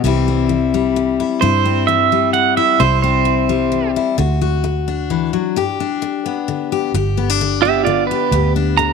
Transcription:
0.04 1.20 C2 medium
0.04 0.45 C3 medium
0.04 0.49 E3 medium
0.04 0.74 G3 medium
0.04 0.27 C4 medium
0.04 1.19 E4 medium
0.28 1.65 C4 medium
0.49 0.91 E3 medium
0.74 2.12 G3 medium
0.96 1.37 E3 medium
1.20 1.42 E4 medium
1.41 2.58 G2 medium
1.41 1.83 C3 medium
1.41 2.56 E4 medium
1.41 1.89 C5 medium
1.65 2.77 C4 medium
1.87 2.29 E3 medium
1.87 2.30 E5 medium
2.12 3.48 G3 medium
2.33 2.75 E3 medium
2.33 2.57 F#5 medium
2.57 2.79 E4 medium
2.57 2.81 E5 medium
2.80 3.96 C2 medium
2.80 3.21 C3 medium
2.80 3.95 E4 medium
2.80 3.01 C5 medium
3.02 4.15 C4 medium
3.02 3.91 C5 medium
3.25 3.67 E3 medium
3.49 4.18 G3 medium
3.72 4.13 E3 medium
3.96 4.18 E4 medium
4.18 5.34 D2 medium
4.18 4.59 D3 medium
4.18 4.40 F#4 medium
4.41 5.53 F#4 medium
4.64 5.05 A3 medium
4.88 5.80 D4 medium
5.10 5.33 E3 medium
5.33 5.56 F#3 medium
5.56 5.97 G2 medium
5.56 6.71 G4 medium
5.80 6.92 D4 medium
6.02 6.43 D3 medium
6.26 6.91 B3 medium
6.48 6.89 D3 medium
6.72 6.92 G4 medium
6.94 8.10 G1 medium
6.94 7.35 G2 medium
6.94 8.11 G4 medium
7.17 7.30 B3 medium
7.30 8.32 D4 soft
7.41 7.82 D3 medium
7.62 8.93 B3 medium
7.62 7.85 G4 medium
7.62 7.84 E5 medium
7.84 8.27 D3 medium
7.84 8.06 F4 medium
7.84 8.07 D5 medium
8.07 8.52 B4 medium
8.11 8.33 G4 medium
8.31 8.93 D2 medium
8.31 8.73 G2 medium
8.31 8.93 G4 medium
8.56 8.93 D4 medium
8.77 8.93 D3 medium
8.77 8.92 A#5 medium

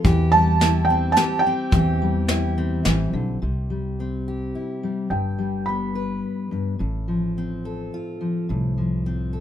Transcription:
0.00 0.90 C4 medium
0.04 1.13 E2 loud
0.04 1.73 E3 medium
0.04 1.17 G4 medium
0.04 kick loud
0.04 closed hi-hat medium
0.32 2.01 G3 medium
0.32 0.90 A5 loud
0.61 2.30 E4 medium
0.61 snare medium
0.61 closed hi-hat medium
0.85 1.16 G5 medium
0.90 1.46 C4 medium
1.12 1.41 A5 loud
1.17 1.74 G4 medium
1.17 snare medium
1.17 closed hi-hat medium
1.39 2.79 G5 loud
1.47 2.57 C4 medium
1.72 2.81 E2 loud
1.72 2.84 E3 medium
1.72 4.27 G4 medium
1.72 kick loud
1.72 closed hi-hat medium
2.02 3.39 G3 medium
2.28 3.39 E4 medium
2.28 snare medium
2.28 closed hi-hat medium
2.58 3.39 C4 medium
2.85 3.11 A1 medium
2.85 3.13 E3 medium
2.85 snare medium
2.85 closed hi-hat medium
3.13 3.39 B1 medium
3.13 3.41 D3 medium
3.42 4.51 C2 medium
3.42 5.11 C3 medium
3.70 4.82 G3 soft
4.00 5.09 C4 soft
4.28 5.95 G4 medium
4.55 5.08 E4 soft
4.83 5.08 G3 soft
5.10 6.20 G1 medium
5.10 6.50 G2 medium
5.10 5.69 G5 medium
5.39 6.77 G3 soft
5.66 6.78 B3 soft
5.66 6.47 B5 medium
5.95 6.77 B4 medium
6.51 6.79 G2 medium
6.79 7.89 A1 medium
6.79 8.46 A2 medium
7.08 8.19 F3 soft
7.38 9.06 C4 soft
7.65 8.47 A4 medium
7.94 8.47 F4 medium
8.21 8.76 F3 medium
8.49 9.40 C2 medium
8.49 9.40 A2 medium
8.78 9.40 F3 soft
9.06 9.40 C4 soft
9.33 9.40 A4 soft

